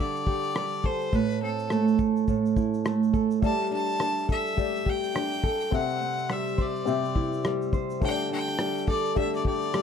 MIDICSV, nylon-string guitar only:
0, 0, Header, 1, 2, 480
1, 0, Start_track
1, 0, Tempo, 573614
1, 947, Time_signature, 4, 2, 24, 8
1, 8217, End_track
2, 0, Start_track
2, 0, Title_t, "Nylon-string guitar"
2, 0, Program_c, 0, 24
2, 0, Note_on_c, 0, 50, 69
2, 0, Note_on_c, 0, 55, 58
2, 0, Note_on_c, 0, 62, 55
2, 0, Note_on_c, 0, 69, 60
2, 222, Note_on_c, 0, 67, 60
2, 461, Note_off_c, 0, 55, 0
2, 471, Note_on_c, 0, 55, 64
2, 702, Note_off_c, 0, 69, 0
2, 706, Note_on_c, 0, 69, 66
2, 945, Note_on_c, 0, 45, 78
2, 1001, Note_off_c, 0, 62, 0
2, 1002, Note_off_c, 0, 67, 0
2, 1003, Note_off_c, 0, 50, 0
2, 1007, Note_off_c, 0, 55, 0
2, 1188, Note_on_c, 0, 60, 52
2, 1428, Note_on_c, 0, 57, 63
2, 1662, Note_off_c, 0, 69, 0
2, 1666, Note_on_c, 0, 69, 56
2, 1901, Note_off_c, 0, 45, 0
2, 1911, Note_on_c, 0, 45, 66
2, 2147, Note_on_c, 0, 64, 57
2, 2379, Note_off_c, 0, 57, 0
2, 2383, Note_on_c, 0, 57, 61
2, 2618, Note_off_c, 0, 69, 0
2, 2621, Note_on_c, 0, 69, 63
2, 2859, Note_off_c, 0, 57, 0
2, 2862, Note_on_c, 0, 55, 77
2, 2925, Note_off_c, 0, 64, 0
2, 2926, Note_off_c, 0, 60, 0
2, 2927, Note_off_c, 0, 45, 0
2, 3103, Note_on_c, 0, 62, 52
2, 3335, Note_off_c, 0, 62, 0
2, 3345, Note_on_c, 0, 62, 65
2, 3582, Note_off_c, 0, 69, 0
2, 3585, Note_on_c, 0, 69, 61
2, 3818, Note_off_c, 0, 55, 0
2, 3822, Note_on_c, 0, 55, 65
2, 4065, Note_on_c, 0, 67, 57
2, 4296, Note_off_c, 0, 62, 0
2, 4306, Note_on_c, 0, 62, 66
2, 4539, Note_off_c, 0, 69, 0
2, 4549, Note_on_c, 0, 69, 61
2, 4789, Note_on_c, 0, 48, 78
2, 4845, Note_off_c, 0, 62, 0
2, 4846, Note_off_c, 0, 69, 0
2, 5027, Note_on_c, 0, 60, 56
2, 5268, Note_off_c, 0, 55, 0
2, 5271, Note_on_c, 0, 55, 62
2, 5505, Note_on_c, 0, 72, 63
2, 5735, Note_off_c, 0, 48, 0
2, 5745, Note_on_c, 0, 48, 68
2, 5985, Note_off_c, 0, 67, 0
2, 5988, Note_on_c, 0, 64, 57
2, 6228, Note_off_c, 0, 55, 0
2, 6232, Note_on_c, 0, 55, 66
2, 6460, Note_off_c, 0, 72, 0
2, 6470, Note_on_c, 0, 72, 61
2, 6709, Note_on_c, 0, 50, 77
2, 6764, Note_off_c, 0, 48, 0
2, 6765, Note_off_c, 0, 60, 0
2, 6766, Note_off_c, 0, 64, 0
2, 6767, Note_off_c, 0, 72, 0
2, 6952, Note_on_c, 0, 62, 57
2, 7189, Note_off_c, 0, 55, 0
2, 7192, Note_on_c, 0, 55, 63
2, 7432, Note_on_c, 0, 69, 66
2, 7661, Note_off_c, 0, 50, 0
2, 7671, Note_on_c, 0, 50, 70
2, 7915, Note_on_c, 0, 67, 55
2, 8140, Note_off_c, 0, 55, 0
2, 8150, Note_on_c, 0, 55, 69
2, 8217, Note_off_c, 0, 50, 0
2, 8217, Note_off_c, 0, 55, 0
2, 8217, Note_off_c, 0, 62, 0
2, 8217, Note_off_c, 0, 67, 0
2, 8217, Note_off_c, 0, 69, 0
2, 8217, End_track
0, 0, End_of_file